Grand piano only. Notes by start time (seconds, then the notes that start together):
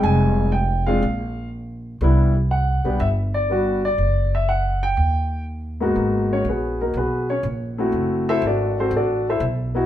Already playing: G3 G#3 C4 D#4
0.04 G#5
0.52 G5
0.86 G#3 C4 D4 F4 F5
2.02 G3 B3 D4 E4
2.51 F#5
2.84 G3 B3 D4 G4
3.00 E5
3.34 D5
3.50 G3 B3 D4 F#4
3.85 D5
4.35 E5
4.49 F#5
4.83 G5
5.80 G#2 A#3 B3 D#4 F#4
6.33 C#4 C#5
6.49 B3 F#4 G#4 B4
6.81 A#3 D#4 F#4 A#4
6.97 B3 F#4 G#4 B4
7.30 C#4 C#5
7.78 A3 C4 E4 F#4
8.29 E4 A4 C5 E5
8.46 D4 F#4 A4 D5
8.80 C4 F#4 A4 C5
8.96 D4 F#4 A4 D5
9.29 E4 A4 C5 E5
9.75 B3 D#4 E4 F#4